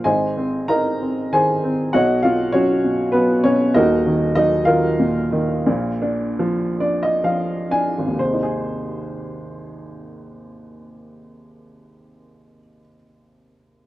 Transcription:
upright piano
0.04 G#1 G#2 G#4 C5 D#5 G#5
0.37 C4
0.68 D#4 A#4 D#5 A#5
1.02 C4
1.32 D#3 G#4 C5 G#5
1.64 C4
1.93 B1 B2 F#4 C#5 D#5 F#5
2.23 B2 F4 F5
2.52 F#3 C#4 F#4 C#5
2.84 B2
3.12 F#3 B3 B4
3.44 B2 C#4 C#5
3.74 D#1 D#2 D#4 F#4 A#4 D#5
4.07 D#3
4.35 F#3 D#4 D#5
4.65 D#3 F4 A#4 F5
5.00 A#2
5.32 D#3
5.66 A#1 A#2
6.02 D4
6.39 F3
6.80 D4 D5
7.03 D#5
7.24 F3 F5
7.71 D4 G#5
7.98 G#1
8.08 D#2
8.16 C3 C5
8.25 G#3
8.34 D#4
8.43 G#4

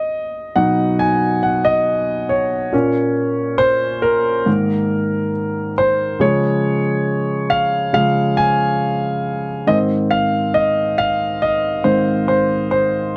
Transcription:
grand piano
Already playing: D#5
0.56 B2 F#3 D#4 F#5
0.99 G#5
1.43 F#5
1.65 D#5
2.29 C#5
2.72 A#2 A#3 C#4
3.58 C5
4.02 A#4
4.46 G#2 D#3 A#3
5.78 C5
6.20 C#3 F3 G#3 C#5
7.50 F5
7.93 C#3 F3 G#3 F5
8.37 G#5
9.67 G#2 D#3 C4 D#5
10.11 F5
10.54 D#5
10.98 F5
11.42 D#5
11.84 G#2 D#3 C4 C5
12.28 C5
12.71 C5

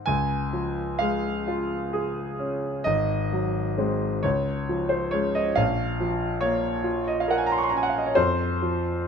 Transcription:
grand piano
0.06 C#2 G#5
0.53 F3
0.99 G#3 F5
1.48 F4
1.93 G#4
2.39 C#4
2.84 G#1 D#5
3.33 F#3
3.78 G#3 C4
4.23 C#2 C#5
4.69 F3
4.89 C5
5.11 G#3 C#4 C#5
5.35 D#5
5.55 A#1 F5
6.00 F3
6.41 A#3 C#5
6.84 F4
7.08 D#5
7.20 F5
7.28 A#4 F#5
7.38 G#5
7.46 A#5
7.52 C6
7.58 C#6
7.63 C6
7.69 C#4 A#5
7.77 G#5
7.83 F#5
7.89 F5
7.98 D#5
8.06 C#5
8.15 F2 C5
8.62 F3

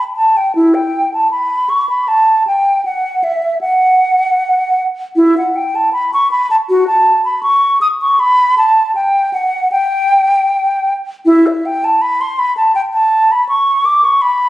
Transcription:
flute
0.16 A5
0.37 G5
0.55 E4
0.74 G5
1.14 A5
1.31 B5
1.69 C#6
1.89 B5
2.08 A5
2.47 G5
2.85 F#5
3.24 E5
3.61 F#5
5.16 E4
5.38 F#5
5.56 G5
5.75 A5
5.93 B5
6.13 C#6
6.31 B5
6.51 A5
6.69 F#4
6.88 A5
7.25 B5
7.43 C#6
7.81 D#6
8.01 C#6
8.20 B5
8.58 A5
8.95 G5
9.33 F#5
9.72 G5
11.26 E4
11.47 E5
11.66 G5
11.84 A5
12.02 B5
12.21 C6
12.39 B5
12.57 A5
12.75 G5
12.93 A5
13.32 B5
13.49 C#6
13.85 D6
14.04 C#6
14.22 B5

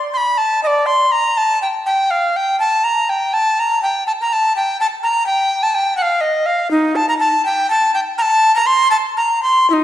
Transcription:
recorder
0.14 B5 C6
0.38 A5
0.63 D5 D#5
0.86 C6
1.12 A#5
1.37 A5
1.62 G5
1.86 G5
2.11 F5
2.36 G5
2.60 A5
2.84 A#5
3.09 G5
3.33 A5
3.60 A#5
3.83 G5
4.07 A5
4.21 A#5
4.33 A5
4.56 G5
4.81 A5
5.03 A#5
5.26 G5
5.63 A5
5.75 G5
5.97 F#5
6.02 F5
6.21 D#5
6.46 F5
6.71 D#4
6.96 A5
7.09 A#5
7.20 A5
7.46 G5
7.70 A5
7.94 G5
8.18 A5 A#5
8.56 A#5
8.66 C6
8.91 A5
9.17 A#5
9.43 C6
9.70 D#4 E4

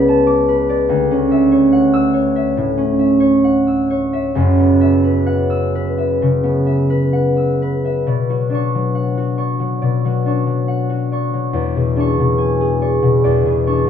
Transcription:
harp
Already playing: C#2 B3 B4 D5 F#5 D6
0.08 A5
0.27 D6
0.49 B4
0.69 D5
0.89 D2
1.11 C#4
1.31 E5
1.52 C#5
1.72 F#5
1.93 E6
2.14 C#5
2.36 E5
2.57 A2
2.77 C#4
2.99 E5
3.20 C#5
3.44 F#5
3.67 E6
3.90 C#5
4.13 E5
4.35 F#1 F#2
4.59 B3
4.81 E5
5.04 B4
5.27 F#5
5.50 E6
5.75 B4
5.98 E5
6.22 C#3
6.43 B3
6.66 E5
6.90 B4
7.13 F#5
7.37 E6
7.62 B4
7.85 E5
8.07 B2 D5
8.29 F#3 F#4
8.50 D4 D5
8.54 C#6
8.75 F#3
8.95 F#5
9.17 F#4
9.38 D5 C#6
9.60 F#3
9.82 B2 D5
10.05 F#3 F#4
10.26 D4 D5 C#6
10.46 F#3
10.68 F#5
10.90 F#4
11.12 D5 C#6
11.33 F#3
11.53 E2 D5
11.76 B2 G#4
11.96 D4 D5 C#6
12.20 B2
12.38 G#5
12.61 G#4
12.81 D5 C#6
13.02 B2
13.24 E2 D5
13.46 B2 G#4
13.67 D4 D5 C#6

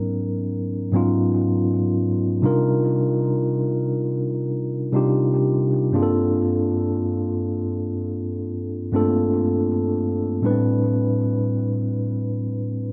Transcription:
tine electric piano
Already playing: G#2 F#3 B3 C#4 D#4 A#4
0.92 G#2 F#3 B3 C#4 D#4 F4
2.42 C3 G3 D4 D#4 F4
2.46 A#4
4.92 C3 G3 D4 D#4 F4
4.96 G4
5.92 G2 A#3 C4 D4 F4
5.96 G#4
6.03 A4
8.92 G2 A3 C4 D4 F4
8.96 A#3 A4
10.42 A2 G3 B3 D4 E4 B4
10.50 C4

